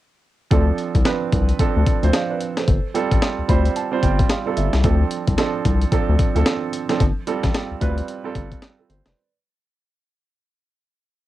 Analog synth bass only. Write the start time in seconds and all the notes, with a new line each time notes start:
0.52 D2
0.95 C2
1.33 C2
1.76 D2
2.03 D2
2.68 G1
3.12 A1
3.38 D2
3.49 D2
4.03 G1
4.57 G1
4.74 C2
4.84 D2
5.28 C2
5.65 C2
6.09 D2
6.36 D2
7.00 G1
7.44 A1
7.71 D2
7.81 D2
8.35 G1
8.90 G1
9.06 F1